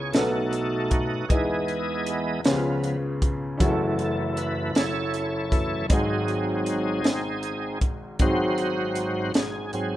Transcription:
Already playing: C#2 C#3 B3 C#4 E4 G#4 C#5
0.12 B1 B2 A3 B3 D#4 F#4 A4, snare, closed hi-hat
0.51 A4, closed hi-hat
0.90 F#4, kick, closed hi-hat
1.29 E2 E3 G#3 B3 D#4 E4 G#4 D#5, kick, closed hi-hat
1.68 closed hi-hat
2.06 closed hi-hat
2.44 C#2 C#3 F3 B3 C#4 F4 G4, snare, closed hi-hat
2.53 G#4
2.84 closed hi-hat
3.22 kick, closed hi-hat
3.57 F#1 F#2 E3 C#4 E4 F#4, kick, closed hi-hat
3.62 A3 G#4
3.68 A4
3.99 A4, closed hi-hat
4.37 B4, closed hi-hat
4.75 E4 A4 C#5, snare, closed hi-hat
5.14 closed hi-hat
5.51 F#2 E3 A3, kick, closed hi-hat
5.89 G#1 G#2 F#3 C4 D#4 F#4 G#4, kick, closed hi-hat
5.93 G#4
6.28 closed hi-hat
6.66 closed hi-hat
7.04 snare, closed hi-hat
7.43 closed hi-hat
7.81 kick, closed hi-hat
8.19 G#1 G#2 F#3 C4 D#4 F#4 G#4 C5, kick, closed hi-hat
8.58 closed hi-hat
8.95 closed hi-hat
9.34 G#4, snare, closed hi-hat
9.73 G#2 F#3 C4 G#4, closed hi-hat

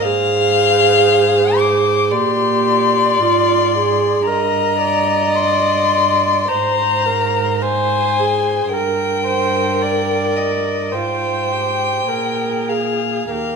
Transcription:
0.02 G#2 G#4 C5 F5
1.57 D6
2.11 A#2 G4 D5 C6
3.18 G#2 F4
3.74 G#4
4.25 G2 A#4 D#5 A#5
4.82 D5
5.35 C6
6.49 G#2 C5 A#5
7.06 A#4
7.62 C5 G#5
8.19 G#4
8.72 G2 A#4 G5
9.26 C5
9.82 D5
10.36 D#5
10.92 G#2 F4 C5 G5
11.52 G4
12.09 A#2 G#4 A#4
12.69 G#4 F5
13.31 D#2 G4 A#4 F5

